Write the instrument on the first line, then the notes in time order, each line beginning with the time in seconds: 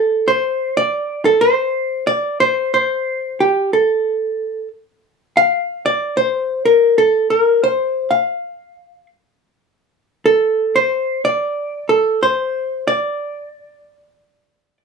hollow-body jazz guitar
Already playing: A4
0.28 C5
0.77 D5
1.25 A4
1.41 C5
2.07 D5
2.40 C5
2.74 C5
3.40 G4
3.73 A4
5.37 F5
5.86 D5
6.17 C5
6.65 A#4
6.98 A4
7.30 A#4
7.64 C5
8.11 F5
10.26 A4
10.76 C5
11.25 D5
11.89 A4
12.23 C5
12.88 D5